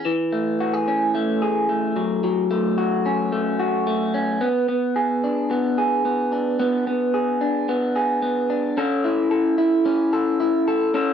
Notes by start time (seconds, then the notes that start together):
Already playing: C#4 G#4
0.05 E3
0.32 A3
0.60 F#4
0.73 G#4
0.88 C#4
1.15 A3
1.42 G#4
1.69 A3
1.96 F#3
2.24 F#3
2.51 A3
2.78 F#4
3.06 C#4
3.32 A3
3.60 F#4
3.87 A3
4.14 C#4
4.41 B3
4.68 B3
4.96 G#4
5.24 D4
5.51 B3
5.78 G#4
6.05 B3
6.32 D4
6.59 B3
6.87 B3
7.14 G#4
7.41 D4
7.69 B3
7.96 G#4
8.22 B3
8.50 D4
8.77 C#4 A4
9.04 E4
9.31 A4
9.58 E4
9.85 C#4
10.13 A4
10.40 E4
10.68 A4
10.94 C#4 A4